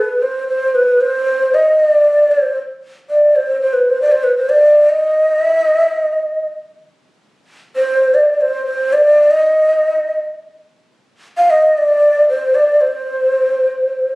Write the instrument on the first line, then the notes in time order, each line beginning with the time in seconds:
ney
Already playing: B4
0.22 C5
0.48 C5
0.75 B4
1.01 C5
1.54 D#5
1.80 D5
2.31 C5
3.10 D5
3.36 C5
3.61 C5
3.73 B4
3.90 C5
4.02 D5
4.12 C5
4.24 B4
4.37 C5
4.49 D5
4.89 D#5
5.45 E5
5.60 D#5
5.77 E5
5.92 D#5
7.76 C5
8.14 D5
8.34 D5
8.41 C5
8.66 C5
8.93 D5
9.31 D#5
11.38 F5
11.50 D#5
11.78 D5
12.29 C5
12.55 D5
12.81 C5